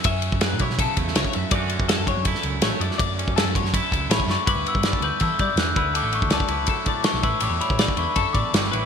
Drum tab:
RD |x-x-x-x-x-x-x-x-|x-x-x-x-x-x-x-x-|x-x-x-x-x-x-x---|x-x-x-x-x-x-x-x-|
SD |----o--o---oo---|----o----o--o--o|----o--o----o-o-|----o-------o---|
BD |o--o--o-o-o--o--|o--o--o-o-------|o--o--o-o-o--o--|o--o-o--o-o---o-|

RD |x-x-x-x-x-x-x-x-|x-x-x-x-x-x-x-x-|
SD |----o-------oo--|----o-------oo--|
BD |---o-o--o-o---o-|---o-o--o-o-----|